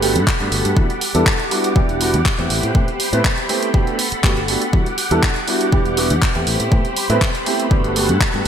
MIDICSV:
0, 0, Header, 1, 6, 480
1, 0, Start_track
1, 0, Key_signature, 1, "minor"
1, 0, Tempo, 495868
1, 742, Time_signature, 4, 2, 24, 8
1, 8207, End_track
2, 0, Start_track
2, 0, Title_t, "String machine"
2, 0, Program_c, 0, 50
2, 0, Note_on_c, 0, 69, 78
2, 0, Note_on_c, 0, 78, 71
2, 0, Note_on_c, 0, 83, 87
2, 726, Note_off_c, 0, 78, 0
2, 732, Note_off_c, 0, 69, 0
2, 732, Note_off_c, 0, 83, 0
2, 737, Note_on_c, 0, 78, 76
2, 737, Note_on_c, 0, 86, 90
2, 738, Note_on_c, 0, 67, 83
2, 2403, Note_off_c, 0, 78, 0
2, 2403, Note_off_c, 0, 86, 0
2, 2421, Note_on_c, 0, 83, 89
2, 2422, Note_on_c, 0, 72, 70
2, 3592, Note_off_c, 0, 67, 0
2, 3610, Note_off_c, 0, 72, 0
2, 3621, Note_on_c, 0, 78, 70
2, 3622, Note_on_c, 0, 69, 76
2, 4560, Note_off_c, 0, 83, 0
2, 4573, Note_off_c, 0, 69, 0
2, 4580, Note_on_c, 0, 67, 83
2, 4582, Note_on_c, 0, 86, 87
2, 6236, Note_off_c, 0, 78, 0
2, 6246, Note_off_c, 0, 86, 0
2, 6261, Note_on_c, 0, 72, 70
2, 6261, Note_on_c, 0, 83, 92
2, 7432, Note_off_c, 0, 67, 0
2, 7450, Note_off_c, 0, 72, 0
2, 7461, Note_on_c, 0, 69, 80
2, 7462, Note_on_c, 0, 78, 70
2, 8207, Note_off_c, 0, 69, 0
2, 8207, Note_off_c, 0, 78, 0
2, 8207, Note_off_c, 0, 83, 0
2, 8207, End_track
3, 0, Start_track
3, 0, Title_t, "Grand piano"
3, 0, Program_c, 1, 0
3, 17, Note_on_c, 1, 57, 89
3, 19, Note_on_c, 1, 59, 81
3, 22, Note_on_c, 1, 62, 81
3, 22, Note_on_c, 1, 66, 82
3, 25, Note_on_c, 1, 67, 100
3, 137, Note_off_c, 1, 57, 0
3, 138, Note_off_c, 1, 59, 0
3, 139, Note_off_c, 1, 62, 0
3, 139, Note_off_c, 1, 66, 0
3, 141, Note_off_c, 1, 67, 0
3, 386, Note_on_c, 1, 57, 78
3, 388, Note_on_c, 1, 59, 70
3, 391, Note_on_c, 1, 62, 70
3, 392, Note_on_c, 1, 66, 75
3, 394, Note_on_c, 1, 67, 82
3, 714, Note_off_c, 1, 57, 0
3, 715, Note_off_c, 1, 59, 0
3, 716, Note_off_c, 1, 62, 0
3, 717, Note_off_c, 1, 66, 0
3, 718, Note_off_c, 1, 67, 0
3, 739, Note_on_c, 1, 55, 79
3, 741, Note_on_c, 1, 59, 70
3, 743, Note_on_c, 1, 62, 72
3, 744, Note_on_c, 1, 64, 72
3, 747, Note_on_c, 1, 66, 87
3, 858, Note_off_c, 1, 55, 0
3, 859, Note_off_c, 1, 59, 0
3, 859, Note_off_c, 1, 62, 0
3, 860, Note_off_c, 1, 64, 0
3, 862, Note_off_c, 1, 66, 0
3, 1106, Note_on_c, 1, 55, 95
3, 1107, Note_on_c, 1, 59, 82
3, 1110, Note_on_c, 1, 62, 83
3, 1110, Note_on_c, 1, 64, 84
3, 1113, Note_on_c, 1, 69, 104
3, 1212, Note_off_c, 1, 55, 0
3, 1213, Note_off_c, 1, 59, 0
3, 1214, Note_off_c, 1, 62, 0
3, 1214, Note_off_c, 1, 64, 0
3, 1215, Note_off_c, 1, 69, 0
3, 1458, Note_on_c, 1, 55, 88
3, 1460, Note_on_c, 1, 59, 80
3, 1463, Note_on_c, 1, 62, 81
3, 1463, Note_on_c, 1, 64, 78
3, 1466, Note_on_c, 1, 66, 92
3, 1641, Note_off_c, 1, 55, 0
3, 1642, Note_off_c, 1, 59, 0
3, 1643, Note_off_c, 1, 62, 0
3, 1643, Note_off_c, 1, 64, 0
3, 1645, Note_off_c, 1, 66, 0
3, 1697, Note_on_c, 1, 55, 91
3, 1699, Note_on_c, 1, 59, 85
3, 1701, Note_on_c, 1, 62, 83
3, 1703, Note_on_c, 1, 64, 85
3, 1705, Note_on_c, 1, 67, 105
3, 1913, Note_off_c, 1, 55, 0
3, 1914, Note_off_c, 1, 59, 0
3, 1915, Note_off_c, 1, 62, 0
3, 1916, Note_off_c, 1, 64, 0
3, 1917, Note_off_c, 1, 67, 0
3, 1942, Note_on_c, 1, 55, 90
3, 1944, Note_on_c, 1, 59, 81
3, 1945, Note_on_c, 1, 62, 80
3, 1946, Note_on_c, 1, 64, 84
3, 1949, Note_on_c, 1, 66, 98
3, 2059, Note_off_c, 1, 55, 0
3, 2060, Note_off_c, 1, 59, 0
3, 2061, Note_off_c, 1, 62, 0
3, 2061, Note_off_c, 1, 64, 0
3, 2063, Note_off_c, 1, 66, 0
3, 2306, Note_on_c, 1, 57, 77
3, 2308, Note_on_c, 1, 59, 69
3, 2311, Note_on_c, 1, 60, 71
3, 2311, Note_on_c, 1, 64, 74
3, 2314, Note_on_c, 1, 67, 86
3, 2634, Note_off_c, 1, 57, 0
3, 2635, Note_off_c, 1, 59, 0
3, 2636, Note_off_c, 1, 60, 0
3, 2636, Note_off_c, 1, 64, 0
3, 2638, Note_off_c, 1, 67, 0
3, 2658, Note_on_c, 1, 57, 77
3, 2661, Note_on_c, 1, 59, 71
3, 2664, Note_on_c, 1, 60, 73
3, 2665, Note_on_c, 1, 64, 70
3, 2667, Note_on_c, 1, 67, 88
3, 2777, Note_off_c, 1, 57, 0
3, 2779, Note_off_c, 1, 59, 0
3, 2780, Note_off_c, 1, 60, 0
3, 2780, Note_off_c, 1, 64, 0
3, 2782, Note_off_c, 1, 67, 0
3, 3024, Note_on_c, 1, 57, 92
3, 3026, Note_on_c, 1, 59, 84
3, 3028, Note_on_c, 1, 60, 83
3, 3030, Note_on_c, 1, 64, 86
3, 3033, Note_on_c, 1, 71, 99
3, 3131, Note_off_c, 1, 57, 0
3, 3132, Note_off_c, 1, 59, 0
3, 3133, Note_off_c, 1, 60, 0
3, 3134, Note_off_c, 1, 64, 0
3, 3136, Note_off_c, 1, 71, 0
3, 3375, Note_on_c, 1, 57, 88
3, 3376, Note_on_c, 1, 59, 76
3, 3379, Note_on_c, 1, 60, 79
3, 3380, Note_on_c, 1, 64, 80
3, 3383, Note_on_c, 1, 67, 95
3, 3559, Note_off_c, 1, 57, 0
3, 3560, Note_off_c, 1, 59, 0
3, 3561, Note_off_c, 1, 60, 0
3, 3562, Note_off_c, 1, 64, 0
3, 3563, Note_off_c, 1, 67, 0
3, 3615, Note_on_c, 1, 57, 91
3, 3618, Note_on_c, 1, 59, 85
3, 3621, Note_on_c, 1, 62, 80
3, 3622, Note_on_c, 1, 66, 84
3, 3624, Note_on_c, 1, 67, 100
3, 3832, Note_off_c, 1, 57, 0
3, 3833, Note_off_c, 1, 59, 0
3, 3835, Note_off_c, 1, 62, 0
3, 3835, Note_off_c, 1, 66, 0
3, 3836, Note_off_c, 1, 67, 0
3, 4096, Note_on_c, 1, 57, 93
3, 4098, Note_on_c, 1, 59, 86
3, 4101, Note_on_c, 1, 62, 88
3, 4102, Note_on_c, 1, 66, 88
3, 4104, Note_on_c, 1, 67, 105
3, 4216, Note_off_c, 1, 57, 0
3, 4217, Note_off_c, 1, 59, 0
3, 4218, Note_off_c, 1, 62, 0
3, 4219, Note_off_c, 1, 66, 0
3, 4220, Note_off_c, 1, 67, 0
3, 4339, Note_on_c, 1, 57, 71
3, 4341, Note_on_c, 1, 59, 67
3, 4343, Note_on_c, 1, 62, 70
3, 4343, Note_on_c, 1, 66, 70
3, 4347, Note_on_c, 1, 67, 81
3, 4457, Note_off_c, 1, 57, 0
3, 4459, Note_off_c, 1, 59, 0
3, 4460, Note_off_c, 1, 62, 0
3, 4460, Note_off_c, 1, 66, 0
3, 4461, Note_off_c, 1, 67, 0
3, 4576, Note_on_c, 1, 55, 76
3, 4577, Note_on_c, 1, 59, 69
3, 4580, Note_on_c, 1, 62, 70
3, 4580, Note_on_c, 1, 64, 73
3, 4583, Note_on_c, 1, 66, 84
3, 4696, Note_off_c, 1, 55, 0
3, 4697, Note_off_c, 1, 59, 0
3, 4698, Note_off_c, 1, 62, 0
3, 4698, Note_off_c, 1, 64, 0
3, 4700, Note_off_c, 1, 66, 0
3, 4943, Note_on_c, 1, 55, 89
3, 4945, Note_on_c, 1, 59, 82
3, 4947, Note_on_c, 1, 62, 84
3, 4948, Note_on_c, 1, 64, 87
3, 4951, Note_on_c, 1, 69, 102
3, 5051, Note_off_c, 1, 55, 0
3, 5052, Note_off_c, 1, 59, 0
3, 5052, Note_off_c, 1, 62, 0
3, 5053, Note_off_c, 1, 64, 0
3, 5055, Note_off_c, 1, 69, 0
3, 5297, Note_on_c, 1, 55, 87
3, 5300, Note_on_c, 1, 59, 78
3, 5302, Note_on_c, 1, 62, 78
3, 5304, Note_on_c, 1, 64, 78
3, 5305, Note_on_c, 1, 66, 95
3, 5480, Note_off_c, 1, 55, 0
3, 5482, Note_off_c, 1, 59, 0
3, 5483, Note_off_c, 1, 62, 0
3, 5484, Note_off_c, 1, 64, 0
3, 5484, Note_off_c, 1, 66, 0
3, 5536, Note_on_c, 1, 55, 90
3, 5537, Note_on_c, 1, 59, 85
3, 5539, Note_on_c, 1, 62, 85
3, 5542, Note_on_c, 1, 64, 86
3, 5544, Note_on_c, 1, 67, 101
3, 5752, Note_off_c, 1, 55, 0
3, 5753, Note_off_c, 1, 59, 0
3, 5754, Note_off_c, 1, 62, 0
3, 5755, Note_off_c, 1, 64, 0
3, 5756, Note_off_c, 1, 67, 0
3, 5777, Note_on_c, 1, 55, 91
3, 5781, Note_on_c, 1, 59, 84
3, 5782, Note_on_c, 1, 62, 84
3, 5785, Note_on_c, 1, 64, 83
3, 5786, Note_on_c, 1, 66, 101
3, 5897, Note_off_c, 1, 55, 0
3, 5899, Note_off_c, 1, 59, 0
3, 5899, Note_off_c, 1, 62, 0
3, 5900, Note_off_c, 1, 64, 0
3, 5901, Note_off_c, 1, 66, 0
3, 6147, Note_on_c, 1, 57, 76
3, 6149, Note_on_c, 1, 59, 71
3, 6151, Note_on_c, 1, 60, 71
3, 6153, Note_on_c, 1, 64, 70
3, 6155, Note_on_c, 1, 67, 83
3, 6474, Note_off_c, 1, 57, 0
3, 6475, Note_off_c, 1, 59, 0
3, 6476, Note_off_c, 1, 60, 0
3, 6477, Note_off_c, 1, 64, 0
3, 6478, Note_off_c, 1, 67, 0
3, 6498, Note_on_c, 1, 57, 81
3, 6500, Note_on_c, 1, 59, 71
3, 6503, Note_on_c, 1, 60, 75
3, 6506, Note_on_c, 1, 64, 72
3, 6507, Note_on_c, 1, 67, 85
3, 6617, Note_off_c, 1, 57, 0
3, 6618, Note_off_c, 1, 59, 0
3, 6620, Note_off_c, 1, 60, 0
3, 6621, Note_off_c, 1, 64, 0
3, 6622, Note_off_c, 1, 67, 0
3, 6868, Note_on_c, 1, 57, 93
3, 6869, Note_on_c, 1, 59, 86
3, 6871, Note_on_c, 1, 60, 88
3, 6873, Note_on_c, 1, 64, 85
3, 6874, Note_on_c, 1, 71, 100
3, 6973, Note_off_c, 1, 57, 0
3, 6973, Note_off_c, 1, 59, 0
3, 6975, Note_off_c, 1, 60, 0
3, 6976, Note_off_c, 1, 64, 0
3, 6976, Note_off_c, 1, 71, 0
3, 7220, Note_on_c, 1, 57, 89
3, 7222, Note_on_c, 1, 59, 80
3, 7223, Note_on_c, 1, 60, 80
3, 7226, Note_on_c, 1, 64, 77
3, 7229, Note_on_c, 1, 67, 97
3, 7402, Note_off_c, 1, 57, 0
3, 7403, Note_off_c, 1, 59, 0
3, 7403, Note_off_c, 1, 60, 0
3, 7405, Note_off_c, 1, 64, 0
3, 7406, Note_off_c, 1, 67, 0
3, 7462, Note_on_c, 1, 57, 91
3, 7463, Note_on_c, 1, 59, 88
3, 7465, Note_on_c, 1, 62, 84
3, 7468, Note_on_c, 1, 66, 85
3, 7469, Note_on_c, 1, 67, 102
3, 7675, Note_off_c, 1, 57, 0
3, 7676, Note_off_c, 1, 59, 0
3, 7677, Note_off_c, 1, 62, 0
3, 7678, Note_off_c, 1, 66, 0
3, 7679, Note_off_c, 1, 67, 0
3, 7703, Note_on_c, 1, 57, 87
3, 7705, Note_on_c, 1, 59, 83
3, 7706, Note_on_c, 1, 62, 82
3, 7709, Note_on_c, 1, 66, 82
3, 7711, Note_on_c, 1, 67, 100
3, 7820, Note_off_c, 1, 57, 0
3, 7821, Note_off_c, 1, 59, 0
3, 7821, Note_off_c, 1, 62, 0
3, 7823, Note_off_c, 1, 66, 0
3, 7824, Note_off_c, 1, 67, 0
3, 8065, Note_on_c, 1, 57, 76
3, 8068, Note_on_c, 1, 59, 73
3, 8069, Note_on_c, 1, 62, 72
3, 8072, Note_on_c, 1, 66, 73
3, 8074, Note_on_c, 1, 67, 84
3, 8207, Note_off_c, 1, 57, 0
3, 8207, Note_off_c, 1, 59, 0
3, 8207, Note_off_c, 1, 62, 0
3, 8207, Note_off_c, 1, 66, 0
3, 8207, Note_off_c, 1, 67, 0
3, 8207, End_track
4, 0, Start_track
4, 0, Title_t, "Fingered electric bass"
4, 0, Program_c, 2, 33
4, 0, Note_on_c, 2, 31, 79
4, 150, Note_on_c, 2, 43, 91
4, 164, Note_off_c, 2, 31, 0
4, 227, Note_off_c, 2, 43, 0
4, 391, Note_on_c, 2, 43, 92
4, 468, Note_off_c, 2, 43, 0
4, 501, Note_on_c, 2, 31, 93
4, 589, Note_off_c, 2, 31, 0
4, 629, Note_on_c, 2, 43, 82
4, 707, Note_off_c, 2, 43, 0
4, 742, Note_on_c, 2, 40, 99
4, 829, Note_off_c, 2, 40, 0
4, 1110, Note_on_c, 2, 40, 98
4, 1188, Note_off_c, 2, 40, 0
4, 1702, Note_on_c, 2, 28, 80
4, 2070, Note_on_c, 2, 40, 91
4, 2084, Note_off_c, 2, 28, 0
4, 2147, Note_off_c, 2, 40, 0
4, 2308, Note_on_c, 2, 40, 96
4, 2387, Note_off_c, 2, 40, 0
4, 2421, Note_on_c, 2, 33, 97
4, 2509, Note_off_c, 2, 33, 0
4, 2549, Note_on_c, 2, 45, 86
4, 2627, Note_off_c, 2, 45, 0
4, 2661, Note_on_c, 2, 45, 95
4, 2749, Note_off_c, 2, 45, 0
4, 3027, Note_on_c, 2, 45, 94
4, 3106, Note_off_c, 2, 45, 0
4, 4101, Note_on_c, 2, 31, 82
4, 4405, Note_off_c, 2, 31, 0
4, 4581, Note_on_c, 2, 40, 92
4, 4669, Note_off_c, 2, 40, 0
4, 4946, Note_on_c, 2, 40, 99
4, 5025, Note_off_c, 2, 40, 0
4, 5541, Note_on_c, 2, 28, 81
4, 5911, Note_on_c, 2, 40, 94
4, 5925, Note_off_c, 2, 28, 0
4, 5988, Note_off_c, 2, 40, 0
4, 6149, Note_on_c, 2, 40, 94
4, 6227, Note_off_c, 2, 40, 0
4, 6260, Note_on_c, 2, 33, 98
4, 6349, Note_off_c, 2, 33, 0
4, 6389, Note_on_c, 2, 45, 79
4, 6467, Note_off_c, 2, 45, 0
4, 6502, Note_on_c, 2, 45, 94
4, 6589, Note_off_c, 2, 45, 0
4, 6869, Note_on_c, 2, 45, 98
4, 6947, Note_off_c, 2, 45, 0
4, 7464, Note_on_c, 2, 31, 84
4, 7833, Note_on_c, 2, 43, 92
4, 7847, Note_off_c, 2, 31, 0
4, 7909, Note_off_c, 2, 43, 0
4, 8071, Note_on_c, 2, 43, 95
4, 8148, Note_off_c, 2, 43, 0
4, 8207, End_track
5, 0, Start_track
5, 0, Title_t, "Muted fingered electric bass strokes"
5, 3988, Note_on_c, 9, 29, 43
5, 4085, Note_off_c, 9, 29, 0
5, 8207, End_track
6, 0, Start_track
6, 0, Title_t, "Drums"
6, 24, Note_on_c, 9, 46, 111
6, 121, Note_off_c, 9, 46, 0
6, 151, Note_on_c, 9, 42, 68
6, 248, Note_off_c, 9, 42, 0
6, 261, Note_on_c, 9, 36, 125
6, 268, Note_on_c, 9, 39, 125
6, 358, Note_off_c, 9, 36, 0
6, 364, Note_off_c, 9, 39, 0
6, 390, Note_on_c, 9, 42, 37
6, 486, Note_off_c, 9, 42, 0
6, 503, Note_on_c, 9, 46, 95
6, 600, Note_off_c, 9, 46, 0
6, 630, Note_on_c, 9, 42, 68
6, 726, Note_off_c, 9, 42, 0
6, 741, Note_on_c, 9, 36, 122
6, 838, Note_off_c, 9, 36, 0
6, 871, Note_on_c, 9, 42, 51
6, 968, Note_off_c, 9, 42, 0
6, 981, Note_on_c, 9, 46, 114
6, 1078, Note_off_c, 9, 46, 0
6, 1111, Note_on_c, 9, 42, 63
6, 1208, Note_off_c, 9, 42, 0
6, 1221, Note_on_c, 9, 36, 127
6, 1226, Note_on_c, 9, 39, 123
6, 1318, Note_off_c, 9, 36, 0
6, 1323, Note_off_c, 9, 39, 0
6, 1351, Note_on_c, 9, 42, 52
6, 1448, Note_off_c, 9, 42, 0
6, 1465, Note_on_c, 9, 46, 95
6, 1562, Note_off_c, 9, 46, 0
6, 1590, Note_on_c, 9, 42, 62
6, 1686, Note_off_c, 9, 42, 0
6, 1701, Note_on_c, 9, 36, 127
6, 1798, Note_off_c, 9, 36, 0
6, 1830, Note_on_c, 9, 42, 38
6, 1927, Note_off_c, 9, 42, 0
6, 1943, Note_on_c, 9, 46, 113
6, 2040, Note_off_c, 9, 46, 0
6, 2069, Note_on_c, 9, 42, 67
6, 2166, Note_off_c, 9, 42, 0
6, 2181, Note_on_c, 9, 36, 123
6, 2186, Note_on_c, 9, 39, 119
6, 2278, Note_off_c, 9, 36, 0
6, 2282, Note_off_c, 9, 39, 0
6, 2310, Note_on_c, 9, 42, 35
6, 2407, Note_off_c, 9, 42, 0
6, 2422, Note_on_c, 9, 46, 96
6, 2519, Note_off_c, 9, 46, 0
6, 2549, Note_on_c, 9, 42, 67
6, 2646, Note_off_c, 9, 42, 0
6, 2661, Note_on_c, 9, 36, 125
6, 2758, Note_off_c, 9, 36, 0
6, 2788, Note_on_c, 9, 42, 48
6, 2885, Note_off_c, 9, 42, 0
6, 2902, Note_on_c, 9, 46, 115
6, 2999, Note_off_c, 9, 46, 0
6, 3030, Note_on_c, 9, 42, 63
6, 3127, Note_off_c, 9, 42, 0
6, 3141, Note_on_c, 9, 36, 120
6, 3145, Note_on_c, 9, 39, 117
6, 3238, Note_off_c, 9, 36, 0
6, 3242, Note_off_c, 9, 39, 0
6, 3268, Note_on_c, 9, 42, 52
6, 3365, Note_off_c, 9, 42, 0
6, 3381, Note_on_c, 9, 46, 95
6, 3478, Note_off_c, 9, 46, 0
6, 3509, Note_on_c, 9, 42, 62
6, 3606, Note_off_c, 9, 42, 0
6, 3621, Note_on_c, 9, 36, 123
6, 3718, Note_off_c, 9, 36, 0
6, 3748, Note_on_c, 9, 42, 37
6, 3845, Note_off_c, 9, 42, 0
6, 3861, Note_on_c, 9, 46, 112
6, 3958, Note_off_c, 9, 46, 0
6, 3988, Note_on_c, 9, 42, 64
6, 4085, Note_off_c, 9, 42, 0
6, 4101, Note_on_c, 9, 36, 125
6, 4104, Note_on_c, 9, 39, 115
6, 4198, Note_off_c, 9, 36, 0
6, 4201, Note_off_c, 9, 39, 0
6, 4228, Note_on_c, 9, 42, 36
6, 4325, Note_off_c, 9, 42, 0
6, 4340, Note_on_c, 9, 46, 94
6, 4437, Note_off_c, 9, 46, 0
6, 4468, Note_on_c, 9, 42, 64
6, 4565, Note_off_c, 9, 42, 0
6, 4581, Note_on_c, 9, 36, 114
6, 4678, Note_off_c, 9, 36, 0
6, 4708, Note_on_c, 9, 42, 50
6, 4805, Note_off_c, 9, 42, 0
6, 4819, Note_on_c, 9, 46, 113
6, 4916, Note_off_c, 9, 46, 0
6, 4947, Note_on_c, 9, 42, 63
6, 5044, Note_off_c, 9, 42, 0
6, 5061, Note_on_c, 9, 36, 122
6, 5064, Note_on_c, 9, 39, 109
6, 5158, Note_off_c, 9, 36, 0
6, 5161, Note_off_c, 9, 39, 0
6, 5189, Note_on_c, 9, 42, 51
6, 5286, Note_off_c, 9, 42, 0
6, 5301, Note_on_c, 9, 46, 88
6, 5398, Note_off_c, 9, 46, 0
6, 5428, Note_on_c, 9, 42, 64
6, 5525, Note_off_c, 9, 42, 0
6, 5541, Note_on_c, 9, 36, 118
6, 5638, Note_off_c, 9, 36, 0
6, 5667, Note_on_c, 9, 42, 35
6, 5764, Note_off_c, 9, 42, 0
6, 5781, Note_on_c, 9, 46, 108
6, 5878, Note_off_c, 9, 46, 0
6, 5908, Note_on_c, 9, 42, 65
6, 6005, Note_off_c, 9, 42, 0
6, 6022, Note_on_c, 9, 36, 119
6, 6024, Note_on_c, 9, 39, 115
6, 6119, Note_off_c, 9, 36, 0
6, 6121, Note_off_c, 9, 39, 0
6, 6148, Note_on_c, 9, 42, 35
6, 6245, Note_off_c, 9, 42, 0
6, 6262, Note_on_c, 9, 46, 89
6, 6359, Note_off_c, 9, 46, 0
6, 6388, Note_on_c, 9, 42, 66
6, 6485, Note_off_c, 9, 42, 0
6, 6502, Note_on_c, 9, 36, 114
6, 6599, Note_off_c, 9, 36, 0
6, 6629, Note_on_c, 9, 42, 50
6, 6725, Note_off_c, 9, 42, 0
6, 6742, Note_on_c, 9, 46, 108
6, 6839, Note_off_c, 9, 46, 0
6, 6871, Note_on_c, 9, 42, 67
6, 6968, Note_off_c, 9, 42, 0
6, 6983, Note_on_c, 9, 36, 116
6, 6988, Note_on_c, 9, 39, 113
6, 7079, Note_off_c, 9, 36, 0
6, 7085, Note_off_c, 9, 39, 0
6, 7113, Note_on_c, 9, 42, 54
6, 7210, Note_off_c, 9, 42, 0
6, 7225, Note_on_c, 9, 46, 89
6, 7322, Note_off_c, 9, 46, 0
6, 7353, Note_on_c, 9, 42, 64
6, 7450, Note_off_c, 9, 42, 0
6, 7463, Note_on_c, 9, 36, 112
6, 7559, Note_off_c, 9, 36, 0
6, 7593, Note_on_c, 9, 42, 36
6, 7689, Note_off_c, 9, 42, 0
6, 7706, Note_on_c, 9, 46, 104
6, 7803, Note_off_c, 9, 46, 0
6, 7832, Note_on_c, 9, 42, 70
6, 7929, Note_off_c, 9, 42, 0
6, 7943, Note_on_c, 9, 36, 117
6, 7950, Note_on_c, 9, 39, 112
6, 8040, Note_off_c, 9, 36, 0
6, 8046, Note_off_c, 9, 39, 0
6, 8074, Note_on_c, 9, 42, 36
6, 8170, Note_off_c, 9, 42, 0
6, 8207, End_track
0, 0, End_of_file